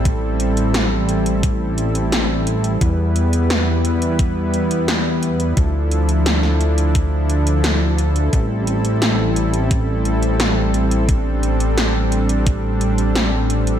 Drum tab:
HH |x-xxx-xxx-xxx-xx|x-xxx-xxx-xxx-xx|x-xxx-xxx-xxx-xx|x-xxx-xxx-xxx-xx|
SD |----o-------o---|----o-------o---|----oo------o---|----o-------o---|
BD |o-------o-------|o-------o-------|o-------o-------|o-------o-------|

HH |x-xxx-xxx-xxx-xx|
SD |----o-------o---|
BD |o-------o-------|